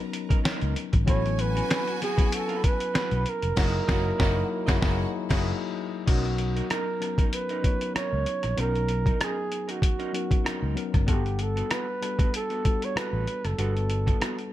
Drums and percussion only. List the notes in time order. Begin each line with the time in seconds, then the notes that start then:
0.13 closed hi-hat
0.30 kick, closed hi-hat
0.45 snare, closed hi-hat
0.61 closed hi-hat
0.76 closed hi-hat
0.93 kick, closed hi-hat
1.07 kick, closed hi-hat
1.26 closed hi-hat
1.39 closed hi-hat
1.57 closed hi-hat
1.71 snare, closed hi-hat
1.88 closed hi-hat
2.02 snare, closed hi-hat
2.18 kick, closed hi-hat
2.32 closed hi-hat
2.49 closed hi-hat
2.64 kick, closed hi-hat
2.80 closed hi-hat
2.95 snare, closed hi-hat
3.11 closed hi-hat
3.26 closed hi-hat
3.42 closed hi-hat
3.57 kick, snare, crash
3.88 kick, snare
4.20 kick, snare
4.68 kick, snare
4.82 kick, snare
5.30 kick, snare, crash
6.08 kick, closed hi-hat, crash
6.25 closed hi-hat
6.38 closed hi-hat
6.57 closed hi-hat
6.70 cross-stick, closed hi-hat
7.02 cross-stick, closed hi-hat
7.18 kick, closed hi-hat
7.33 closed hi-hat
7.49 closed hi-hat
7.64 kick, closed hi-hat
7.81 closed hi-hat
7.96 cross-stick, closed hi-hat
8.26 closed hi-hat
8.43 cross-stick, closed hi-hat
8.58 closed hi-hat
8.75 closed hi-hat
8.88 closed hi-hat
9.06 kick, closed hi-hat
9.21 cross-stick, closed hi-hat
9.52 closed hi-hat
9.69 closed hi-hat
9.82 kick, closed hi-hat
10.00 closed hi-hat
10.15 closed hi-hat
10.31 kick, closed hi-hat
10.46 cross-stick, closed hi-hat
10.77 closed hi-hat
10.94 kick, cross-stick, closed hi-hat
11.08 kick, closed hi-hat
11.26 closed hi-hat
11.39 closed hi-hat
11.57 closed hi-hat
11.71 cross-stick, closed hi-hat
12.03 cross-stick, closed hi-hat
12.19 kick, closed hi-hat
12.34 closed hi-hat
12.50 closed hi-hat
12.65 kick, closed hi-hat
12.82 closed hi-hat
12.97 cross-stick, closed hi-hat
13.27 closed hi-hat
13.45 cross-stick, closed hi-hat
13.59 closed hi-hat
13.77 closed hi-hat
13.90 closed hi-hat
14.07 kick, closed hi-hat
14.22 cross-stick, closed hi-hat
14.39 closed hi-hat